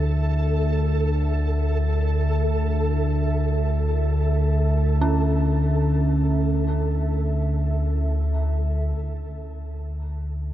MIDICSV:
0, 0, Header, 1, 5, 480
1, 0, Start_track
1, 0, Tempo, 500000
1, 10115, End_track
2, 0, Start_track
2, 0, Title_t, "Analog synth pad"
2, 0, Program_c, 0, 89
2, 0, Note_on_c, 0, 50, 79
2, 0, Note_on_c, 0, 69, 76
2, 0, Note_on_c, 0, 76, 78
2, 8596, Note_off_c, 0, 50, 0
2, 8603, Note_off_c, 0, 69, 0
2, 8610, Note_off_c, 0, 76, 0
2, 10115, End_track
3, 0, Start_track
3, 0, Title_t, "Synth texture"
3, 0, Program_c, 1, 99
3, 0, Note_on_c, 1, 69, 80
3, 8618, Note_off_c, 1, 69, 0
3, 10115, End_track
4, 0, Start_track
4, 0, Title_t, "Synth bell"
4, 0, Program_c, 2, 98
4, 0, Control_c, 2, 64, 127
4, 0, Note_on_c, 2, 67, 64
4, 2391, Note_off_c, 2, 67, 0
4, 4814, Note_on_c, 2, 61, 67
4, 8617, Control_c, 2, 64, 0
4, 8777, Control_c, 2, 64, 127
4, 10115, Note_off_c, 2, 61, 0
4, 10115, End_track
5, 0, Start_track
5, 0, Title_t, "Synth drone"
5, 0, Program_c, 3, 95
5, 0, Note_on_c, 3, 38, 66
5, 0, Note_on_c, 3, 50, 63
5, 8581, Note_off_c, 3, 38, 0
5, 8592, Note_on_c, 3, 38, 69
5, 8593, Note_off_c, 3, 50, 0
5, 8604, Note_on_c, 3, 50, 70
5, 10115, Note_off_c, 3, 38, 0
5, 10115, Note_off_c, 3, 50, 0
5, 10115, End_track
0, 0, End_of_file